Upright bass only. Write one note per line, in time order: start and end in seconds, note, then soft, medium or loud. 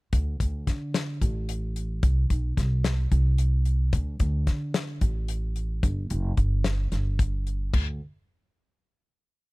0.13 0.38 D2 medium
0.40 0.65 D2 medium
0.67 1.18 D3 medium
1.21 1.99 A1 medium
2.03 2.28 C2 medium
2.30 2.55 B1 medium
2.57 3.08 C2 medium
3.12 3.89 C2 medium
3.93 4.18 D2 medium
4.20 4.45 D2 medium
4.47 4.98 D3 medium
5.01 5.79 A1 medium
5.83 6.08 G1 medium
6.10 6.36 F#1 medium
6.37 6.88 G1 medium
6.92 7.69 G1 medium
7.73 7.99 D2 medium